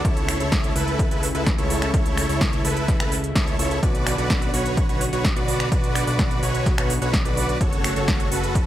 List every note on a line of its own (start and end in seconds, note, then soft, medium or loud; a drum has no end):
0.05 0.38 C#2 loud
0.05 3.79 C#3 medium
0.05 3.79 A3 medium
0.05 3.79 E4 medium
0.05 0.37 E4 medium
0.05 0.37 A4 medium
0.05 0.37 C#5 medium
0.05 kick loud
0.05 closed hi-hat medium
0.17 closed hi-hat soft
0.29 finger snap medium
0.29 open hi-hat loud
0.40 0.73 C#2 medium
0.40 0.73 E4 loud
0.40 0.73 A4 medium
0.40 0.73 C#5 loud
0.40 closed hi-hat soft
0.52 kick loud
0.52 snare loud
0.52 closed hi-hat medium
0.64 closed hi-hat soft
0.76 1.09 C#2 loud
0.76 1.08 E4 medium
0.76 1.08 A4 medium
0.76 1.08 B4 loud
0.76 open hi-hat loud
0.88 closed hi-hat soft
0.99 kick loud
0.99 closed hi-hat medium
1.11 1.32 C#2 medium
1.11 1.26 E4 loud
1.11 1.26 A4 medium
1.11 1.26 B4 loud
1.11 closed hi-hat soft
1.23 open hi-hat loud
1.35 1.56 C#2 loud
1.35 1.50 E4 medium
1.35 1.49 A4 medium
1.35 1.49 B4 medium
1.35 closed hi-hat soft
1.46 kick loud
1.46 snare loud
1.46 closed hi-hat medium
1.58 1.91 C#2 loud
1.58 1.91 E4 medium
1.58 1.91 A4 medium
1.58 1.91 C#5 loud
1.58 closed hi-hat soft
1.70 open hi-hat loud
1.82 finger snap medium
1.82 closed hi-hat soft
1.94 2.27 C#2 loud
1.94 2.26 E4 medium
1.94 2.26 A4 medium
1.94 2.26 C#5 loud
1.94 kick loud
1.94 closed hi-hat medium
2.06 closed hi-hat soft
2.17 finger snap medium
2.17 open hi-hat loud
2.29 2.62 C#2 loud
2.29 2.62 E4 loud
2.29 2.62 A4 medium
2.29 2.62 C#5 loud
2.29 open hi-hat medium
2.41 kick loud
2.41 snare loud
2.41 closed hi-hat medium
2.53 closed hi-hat soft
2.65 2.98 C#2 medium
2.65 2.97 E4 medium
2.65 2.97 A4 medium
2.65 2.97 B4 loud
2.65 open hi-hat loud
2.77 closed hi-hat soft
2.88 kick loud
2.88 snare soft
2.88 closed hi-hat medium
3.00 3.33 C#2 medium
3.00 3.15 E4 loud
3.00 3.15 A4 medium
3.00 3.15 B4 loud
3.00 finger snap medium
3.00 closed hi-hat soft
3.12 open hi-hat loud
3.24 closed hi-hat soft
3.35 3.57 C#2 loud
3.35 3.56 E4 medium
3.35 3.56 A4 medium
3.35 3.56 C#5 loud
3.35 kick loud
3.35 snare loud
3.35 closed hi-hat medium
3.47 closed hi-hat soft
3.59 3.80 C#2 loud
3.59 3.79 E4 loud
3.59 3.79 A4 medium
3.59 3.79 C#5 loud
3.59 open hi-hat loud
3.71 closed hi-hat soft
3.83 4.16 B1 loud
3.83 7.57 D3 medium
3.83 7.57 B3 medium
3.83 7.57 F#4 medium
3.83 4.15 F#4 medium
3.83 4.15 B4 medium
3.83 4.15 D5 loud
3.83 kick loud
3.83 closed hi-hat medium
3.95 closed hi-hat soft
4.07 finger snap medium
4.07 open hi-hat loud
4.18 4.51 B1 loud
4.18 4.51 F#4 loud
4.18 4.51 B4 medium
4.18 4.51 D5 loud
4.18 closed hi-hat soft
4.30 kick loud
4.30 snare loud
4.30 closed hi-hat medium
4.42 closed hi-hat soft
4.54 4.87 B1 medium
4.54 4.86 F#4 medium
4.54 4.86 B4 medium
4.54 4.86 C#5 loud
4.54 open hi-hat loud
4.66 closed hi-hat soft
4.77 kick loud
4.77 closed hi-hat medium
4.89 5.10 B1 loud
4.89 5.04 F#4 loud
4.89 5.04 B4 medium
4.89 5.04 C#5 loud
4.89 closed hi-hat soft
5.01 open hi-hat loud
5.13 5.34 B1 medium
5.13 5.28 F#4 medium
5.13 5.27 B4 medium
5.13 5.28 C#5 medium
5.13 closed hi-hat soft
5.25 kick loud
5.25 snare loud
5.25 closed hi-hat medium
5.36 5.69 B1 loud
5.36 5.69 F#4 medium
5.36 5.69 B4 medium
5.36 5.69 D5 loud
5.36 closed hi-hat soft
5.48 open hi-hat loud
5.60 finger snap medium
5.60 closed hi-hat soft
5.72 6.05 B1 medium
5.72 6.04 F#4 medium
5.72 6.04 B4 medium
5.72 6.04 D5 loud
5.72 kick loud
5.72 closed hi-hat medium
5.84 closed hi-hat soft
5.95 finger snap medium
5.95 open hi-hat loud
6.07 6.40 B1 loud
6.07 6.40 F#4 loud
6.07 6.40 B4 medium
6.07 6.40 D5 loud
6.07 open hi-hat medium
6.19 kick loud
6.19 snare loud
6.19 closed hi-hat medium
6.31 closed hi-hat soft
6.43 6.76 B1 medium
6.43 6.75 F#4 medium
6.43 6.75 B4 medium
6.43 6.75 C#5 loud
6.43 open hi-hat loud
6.55 closed hi-hat soft
6.66 kick loud
6.66 snare soft
6.66 closed hi-hat medium
6.78 6.99 B1 loud
6.78 6.93 F#4 loud
6.78 6.93 B4 medium
6.78 6.93 C#5 loud
6.78 finger snap medium
6.78 closed hi-hat soft
6.90 open hi-hat loud
7.02 7.23 B1 loud
7.02 7.17 F#4 medium
7.02 7.16 B4 medium
7.02 7.17 C#5 medium
7.02 closed hi-hat soft
7.13 kick loud
7.13 snare loud
7.13 closed hi-hat medium
7.25 7.58 B1 loud
7.25 7.58 F#4 medium
7.25 7.58 B4 medium
7.25 7.58 D5 loud
7.25 closed hi-hat soft
7.37 open hi-hat loud
7.49 closed hi-hat soft
7.61 7.94 F#1 medium
7.61 8.66 C#3 medium
7.61 8.66 A3 medium
7.61 7.93 F#4 medium
7.61 8.66 F#4 medium
7.61 7.93 A4 medium
7.61 7.93 C#5 loud
7.61 kick loud
7.61 closed hi-hat medium
7.73 closed hi-hat soft
7.84 finger snap medium
7.84 open hi-hat loud
7.96 8.29 F#1 loud
7.96 8.29 F#4 loud
7.96 8.29 A4 medium
7.96 8.29 C#5 loud
7.96 closed hi-hat soft
8.08 kick loud
8.08 snare loud
8.08 closed hi-hat medium
8.20 closed hi-hat soft
8.32 8.65 F#1 loud
8.32 8.64 F#4 medium
8.32 8.64 A4 medium
8.32 8.64 B4 loud
8.32 open hi-hat loud
8.44 closed hi-hat soft
8.55 kick loud
8.55 closed hi-hat medium